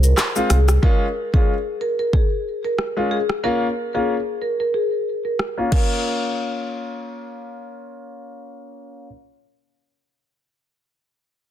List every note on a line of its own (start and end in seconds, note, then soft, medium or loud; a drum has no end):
0.00 0.14 C2 medium
0.00 0.13 A#4 medium
0.00 shaker medium
0.18 cross-stick loud
0.18 clap medium
0.18 shaker medium
0.36 0.55 G#3 medium
0.36 0.55 C4 medium
0.36 0.55 F4 medium
0.36 shaker medium
0.50 0.78 C2 loud
0.50 0.63 G#4 medium
0.50 cross-stick medium
0.50 closed hi-hat medium
0.50 shaker medium
0.68 cross-stick loud
0.68 shaker medium
0.82 1.05 G#3 medium
0.82 1.05 C#4 medium
0.82 1.05 F4 loud
0.82 0.95 A#4 medium
0.82 kick loud
1.33 1.53 G#3 medium
1.33 1.53 C#4 medium
1.33 1.53 F4 medium
1.33 1.44 G#4 medium
1.33 kick medium
1.81 1.93 A#4 medium
1.99 2.09 A#4 medium
2.13 2.26 G#4 medium
2.13 kick loud
2.64 2.74 A#4 medium
2.79 cross-stick medium
2.97 3.16 G#3 medium
2.97 3.16 C#4 medium
2.97 3.16 F4 medium
3.11 3.24 G#4 medium
3.30 cross-stick medium
3.43 3.65 A#3 medium
3.43 3.66 C#4 medium
3.43 3.66 F4 loud
3.43 3.66 A#4 loud
3.94 4.13 A#3 medium
3.94 4.14 C#4 medium
3.94 4.14 F4 medium
3.94 4.04 G#4 medium
4.42 4.54 A#4 medium
4.60 4.70 A#4 medium
4.74 4.87 G#4 medium
5.25 5.35 A#4 medium
5.39 cross-stick medium
5.57 5.70 A#3 medium
5.57 5.71 C#4 medium
5.57 5.71 F4 medium
5.72 7.96 A#4 medium
5.72 kick loud
5.72 crash medium